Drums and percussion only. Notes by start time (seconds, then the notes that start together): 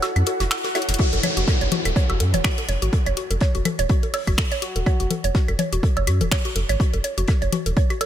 0.02 snare, closed hi-hat, high woodblock
0.16 closed hi-hat, claves
0.26 closed hi-hat, low bongo
0.40 snare, closed hi-hat
0.51 finger snap, snare, closed hi-hat, high woodblock
0.64 snare, closed hi-hat, low bongo
0.75 snare, closed hi-hat, claves
0.82 closed hi-hat
0.88 snare, closed hi-hat
0.94 closed hi-hat
0.98 kick, closed hi-hat
1.13 closed hi-hat, low bongo
1.23 closed hi-hat, low conga, claves
1.37 closed hi-hat
1.48 kick, snare, closed hi-hat, low bongo
1.61 closed hi-hat
1.72 closed hi-hat, low conga
1.85 closed hi-hat, low bongo, claves
1.96 kick, closed hi-hat
2.10 closed hi-hat, high woodblock
2.20 closed hi-hat, low bongo
2.34 closed hi-hat, low conga
2.44 finger snap, kick, snare, closed hi-hat, claves
2.58 closed hi-hat, low bongo
2.69 closed hi-hat
2.82 closed hi-hat
2.93 kick, closed hi-hat, low bongo
3.06 closed hi-hat, claves
3.17 closed hi-hat
3.31 closed hi-hat, low bongo
3.41 kick, snare, closed hi-hat
3.55 closed hi-hat
3.65 closed hi-hat, low bongo, low conga, claves
3.79 closed hi-hat
3.89 kick, closed hi-hat
4.03 closed hi-hat, low bongo
4.14 closed hi-hat, open hi-hat, high woodblock
4.27 kick, closed hi-hat, claves
4.38 finger snap, kick, snare, low bongo
4.51 snare, closed hi-hat
4.62 closed hi-hat
4.76 closed hi-hat, low bongo
4.86 kick, closed hi-hat, claves
5.00 closed hi-hat
5.11 closed hi-hat, low bongo, low conga
5.24 closed hi-hat
5.35 kick, snare, closed hi-hat
5.48 closed hi-hat, low bongo, claves
5.59 closed hi-hat, low conga
5.73 closed hi-hat
5.83 kick, closed hi-hat, low bongo
5.97 closed hi-hat, high woodblock
6.07 closed hi-hat, claves
6.21 closed hi-hat, low bongo, low conga
6.32 finger snap, kick, snare, closed hi-hat
6.45 closed hi-hat
6.56 closed hi-hat, low bongo
6.69 closed hi-hat, claves
6.80 kick, closed hi-hat
6.94 closed hi-hat, low bongo
7.04 closed hi-hat
7.18 closed hi-hat
7.28 kick, snare, closed hi-hat, low bongo, claves
7.42 closed hi-hat
7.53 closed hi-hat, low conga
7.66 closed hi-hat, low bongo
7.77 kick, closed hi-hat
7.90 closed hi-hat, claves
8.01 closed hi-hat, open hi-hat, low bongo, high woodblock